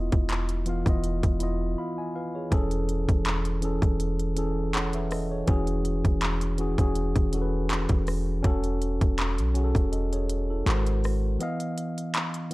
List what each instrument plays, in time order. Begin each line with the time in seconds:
Already playing: 808-style bass E1, tine electric piano B3 E4 F4 D#5
0.12 808-style bass E1, kick, closed hi-hat
0.29 clap, closed hi-hat
0.49 closed hi-hat
0.65 tine electric piano E3 B3 F4 F5, closed hi-hat
0.85 808-style bass E1, tine electric piano B3 E4 F4 D#5, kick, closed hi-hat
1.04 closed hi-hat
1.23 808-style bass E1, kick, closed hi-hat
1.40 tine electric piano B3 E4 F4 D#5, closed hi-hat
1.78 tine electric piano F5 B5
1.98 tine electric piano D#5 G#5
2.15 tine electric piano B4 F5
2.35 tine electric piano G#4 C#5
2.50 808-style bass E1, tine electric piano E3 C#4 G#4 A4, kick, closed hi-hat
2.71 closed hi-hat
2.89 closed hi-hat
3.09 808-style bass E1, kick, closed hi-hat
3.25 clap, closed hi-hat
3.45 closed hi-hat
3.61 tine electric piano E3 C#4 G#4 A4, closed hi-hat
3.82 808-style bass E1, kick, closed hi-hat
4.00 closed hi-hat
4.19 closed hi-hat
4.35 tine electric piano E3 C#4 G#4 A4, closed hi-hat
4.74 tine electric piano C#5 F#5, clap, closed hi-hat
4.93 tine electric piano B4 E5, closed hi-hat
5.11 tine electric piano A4 D#5, cross-stick, open hi-hat
5.31 tine electric piano G#4 C#5
5.47 808-style bass E1, tine electric piano E3 C#4 F#4 G#4, kick, closed hi-hat
5.67 closed hi-hat
5.85 closed hi-hat
6.05 808-style bass E1, kick, closed hi-hat
6.21 clap, closed hi-hat
6.41 closed hi-hat
6.57 tine electric piano E3 C#4 F#4 G#4, closed hi-hat
6.77 808-style bass E1, tine electric piano E3 C#4 F#4 G#4, kick, closed hi-hat
6.95 closed hi-hat
7.16 808-style bass E1, kick, closed hi-hat
7.32 tine electric piano E3 C#4 F#4 A4, closed hi-hat
7.42 tine electric piano B4
7.70 clap, closed hi-hat
7.89 808-style bass E1, kick, closed hi-hat
8.07 cross-stick, open hi-hat
8.43 808-style bass E1, tine electric piano C#4 F#4 A4, kick, closed hi-hat
8.64 closed hi-hat
8.82 closed hi-hat
9.01 808-style bass E1, kick, closed hi-hat
9.18 clap, closed hi-hat
9.38 808-style bass B1, closed hi-hat
9.54 tine electric piano C#4 F#4 G#4, closed hi-hat
9.64 tine electric piano A4
9.75 808-style bass E1, kick, closed hi-hat
9.92 tine electric piano A4 D#5, closed hi-hat
10.13 tine electric piano G#4 C#5, closed hi-hat
10.29 closed hi-hat
10.50 tine electric piano E4 A4
10.65 808-style bass G#1, tine electric piano G#3 F#4 A#4 C5, clap, closed hi-hat
10.87 closed hi-hat
11.04 cross-stick, open hi-hat
11.39 tine electric piano E3 B3 D#5 F5, closed hi-hat
11.60 closed hi-hat
11.78 closed hi-hat
11.98 closed hi-hat
12.14 clap, closed hi-hat
12.34 closed hi-hat
12.50 tine electric piano E3